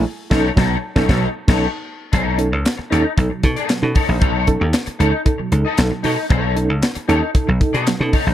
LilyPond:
<<
  \new Staff \with { instrumentName = "Clean electric guitar" } { \time 4/4 \key b \mixolydian \tempo 4 = 115 r8 <dis' a' cis''>8 <dis' a' cis''>8 r16 <dis' a' cis''>16 <dis' a' cis''>8 r16 <dis' a' cis''>8 r8. | <dis' a' cis''>8 r4 <dis' a' cis''>8 r8. <dis' a' dis''>8 r16 <dis' a' cis''>8 | <dis' a' cis''>8 r4 <dis' a' cis''>8 r8. <dis' a' dis''>8 r16 <dis' a' cis''>8 | <dis' a' cis''>8 r4 <dis' a' cis''>8 r8. <dis' a' dis''>8 r16 <dis' a' cis''>8 | }
  \new Staff \with { instrumentName = "Reed electric piano" } { \time 4/4 \key b \mixolydian r8 <cis' dis' a'>8 <b, fis>8 r16 <cis' dis' a'>16 <b, fis>8 r16 <cis' dis' a'>8 r8. | <b, fis>16 r16 <cis' dis' a'>16 r8. <cis' dis' a'>16 r16 <dis' a'>16 <b, fis>16 <dis' a'>16 r16 <b, fis>16 <cis' dis' a'>16 <dis' a'>16 r16 | <b, fis>16 r16 <cis' dis' a'>16 <dis' a'>16 r8 <cis' dis' a'>16 r16 <dis' a'>16 <b, fis>16 <dis' a'>16 r16 <dis' a'>16 <b, fis>16 <dis' a'>16 r16 | <b, fis>16 r16 <cis' dis' a'>16 <dis' a'>16 r8 <cis' dis' a'>16 r16 <dis' a'>16 <b, fis>16 <dis' a'>16 r16 <b, fis>16 <cis' dis' a'>16 <dis' a'>16 r16 | }
  \new Staff \with { instrumentName = "Slap bass" } { \clef bass \time 4/4 \key b \mixolydian r8 b,,8 b,,8 r16 b,,16 b,,8 r16 b,,8 r8. | b,,8. cis,16 r8 dis,16 r16 b,,16 r16 b,16 r8 b,16 r16 ais,,16 | b,,8. dis,16 r8 cis,16 r8. cis,16 r16 b,,16 r16 b,16 r16 | b,,8. cis,16 r8 dis,16 r8 b,,16 r16 b,16 r16 b,16 r16 ais,,16 | }
  \new DrumStaff \with { instrumentName = "Drums" } \drummode { \time 4/4 r8 <cymc bd sn>8 <bd sn>8. <bd sn>16 <bd sn>8. <cymc bd sn>16 r4 | <hh bd>8 hh8 <hc hh sn>8 hh8 <hh bd>8 <hh bd>16 hh16 <hc hh sn>8 <hho bd>8 | <hh bd>8 <hh bd>8 <hc hh sn>16 hh16 hh8 <hh bd>8 hh8 <hc hh sn>8 hho8 | <hh bd>8 hh8 <hc hh sn>16 hh16 hh8 <hh bd>8 <hh bd>16 hh16 <hc hh sn>8 <hho bd>8 | }
>>